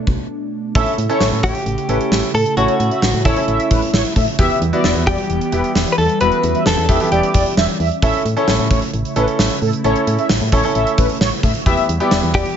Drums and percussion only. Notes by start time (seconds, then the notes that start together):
0.07 kick
0.75 kick, closed hi-hat
0.86 closed hi-hat
0.98 closed hi-hat
1.09 closed hi-hat
1.20 snare
1.32 closed hi-hat
1.43 kick, closed hi-hat
1.55 closed hi-hat
1.66 closed hi-hat
1.78 closed hi-hat
1.89 closed hi-hat
2.01 closed hi-hat
2.12 snare
2.23 closed hi-hat
2.34 open hi-hat
2.46 closed hi-hat
2.57 closed hi-hat
2.68 closed hi-hat
2.80 closed hi-hat
2.91 closed hi-hat
3.02 snare
3.14 closed hi-hat
3.25 kick, closed hi-hat
3.37 closed hi-hat
3.48 closed hi-hat
3.60 closed hi-hat
3.71 kick, closed hi-hat
3.82 closed hi-hat
3.94 snare
4.05 closed hi-hat
4.16 kick, open hi-hat
4.28 closed hi-hat
4.39 kick, closed hi-hat
4.50 closed hi-hat
4.62 closed hi-hat
4.73 closed hi-hat
4.84 snare
4.96 closed hi-hat
5.07 kick, closed hi-hat
5.18 closed hi-hat
5.30 closed hi-hat
5.41 closed hi-hat
5.52 closed hi-hat
5.64 closed hi-hat
5.75 snare
5.87 closed hi-hat
5.98 open hi-hat
6.09 closed hi-hat
6.21 closed hi-hat
6.32 closed hi-hat
6.43 closed hi-hat
6.55 closed hi-hat
6.66 snare
6.77 closed hi-hat
6.89 kick, closed hi-hat
7.00 closed hi-hat
7.12 closed hi-hat
7.23 closed hi-hat
7.34 kick, closed hi-hat
7.46 closed hi-hat
7.57 snare
7.69 closed hi-hat
7.80 open hi-hat
7.91 closed hi-hat
8.02 kick, closed hi-hat
8.14 closed hi-hat
8.26 closed hi-hat
8.37 closed hi-hat
8.48 snare
8.59 closed hi-hat
8.71 kick, closed hi-hat
8.82 closed hi-hat
8.93 closed hi-hat
9.05 closed hi-hat
9.16 closed hi-hat
9.28 closed hi-hat
9.39 snare
9.50 closed hi-hat
9.62 open hi-hat
9.73 closed hi-hat
9.84 closed hi-hat
9.96 closed hi-hat
10.07 closed hi-hat
10.19 closed hi-hat
10.29 snare
10.41 closed hi-hat
10.52 kick, closed hi-hat
10.64 closed hi-hat
10.75 closed hi-hat
10.87 closed hi-hat
10.98 kick, closed hi-hat
11.10 closed hi-hat
11.21 snare
11.32 closed hi-hat
11.43 kick, open hi-hat
11.55 closed hi-hat
11.66 kick, closed hi-hat
11.77 closed hi-hat
11.89 closed hi-hat
12.00 closed hi-hat
12.11 snare
12.23 closed hi-hat
12.34 kick, closed hi-hat
12.45 closed hi-hat